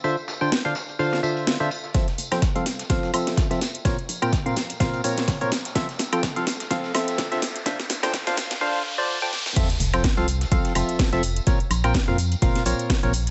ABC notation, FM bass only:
X:1
M:4/4
L:1/16
Q:"Swing 16ths" 1/4=126
K:F
V:1 name="FM bass" clef=bass
z16 | z2 F,,,2 z C,,2 z F,,, z F,,,2 z F,,,2 z | z2 B,,,2 z F,,2 z B,,, z B,,,2 z B,,,2 z | z2 F,,,2 z C,,2 z F,,, z F,,,3 D,,2 z |
z2 D,,2 z12 | z2 F,,,2 z C,,2 z C,, z F,,, z2 F,,,2 z | z2 B,,,2 z F,,2 z F,,, z B,,, z2 B,,,2 z |]